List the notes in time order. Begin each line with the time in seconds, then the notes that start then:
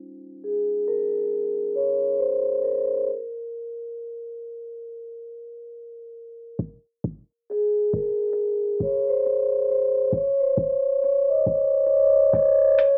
0.44 G#4
0.88 A#4
1.76 C#5
2.19 C5
2.64 A#4
6.59 kick, closed hi-hat
7.04 kick
7.50 G#4, closed hi-hat
7.94 A#4, kick
8.33 closed hi-hat
8.80 C#5, kick
9.09 C5
9.26 closed hi-hat
9.71 C5
10.12 C#5, kick, closed hi-hat
10.40 C5
10.57 kick
11.03 C#5, closed hi-hat
11.29 D#5
11.41 D#5
11.46 C#5, kick, closed hi-hat
11.86 closed hi-hat
12.33 kick, closed hi-hat
12.78 closed hi-hat